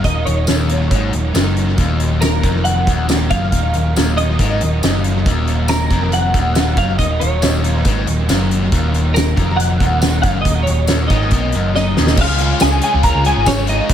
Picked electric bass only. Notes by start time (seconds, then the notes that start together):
0.04 D#1
0.27 D#1
0.48 D#1
0.92 G#1
1.13 D#1
1.34 F#1
1.78 D#1
2.44 F1
2.88 D#1
3.32 F#1
3.53 D#1
3.75 D#1
3.97 D#1
4.40 G#1
4.62 D#1
4.84 F#1
5.26 D#1
5.91 F1
6.34 D#1
6.77 F#1
6.99 D#1
7.22 D#1
7.44 D#1
7.86 G#1
8.07 D#1
8.30 F#1
8.72 D#1
9.37 F1
9.81 D#1
10.24 F#1
10.46 D#1
10.68 D#1
10.90 D#1
11.11 G#1
11.32 B1
11.54 F#1
11.98 D#1
12.18 C#2
12.62 C#2
12.94 C#2
13.15 C#2
13.36 G#1
13.90 B1